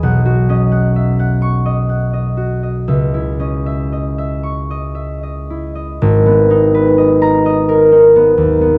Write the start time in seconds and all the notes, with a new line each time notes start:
Already playing: D#5 B5
0.03 B1 F#5
0.26 F#4
0.49 C#4 D#5
0.72 F#5
0.96 E5
1.19 F#5
1.42 C#6
1.66 D#5
1.89 F#5
2.13 D#5
2.37 F#4
2.63 D#5
2.88 C#2 E5
3.14 E4
3.39 C#4 D#5
3.66 E5
3.92 D#5
4.18 E5
4.43 C#6
4.71 D#5
4.95 E5
5.23 D#5
5.50 E4
5.75 D#5
6.02 G#1
6.26 B3
6.50 D#4
6.74 B4
6.98 D#5
7.22 A#5
7.46 D#5
7.69 A#4
7.92 D#4
8.16 B3
8.38 D#2
8.61 B3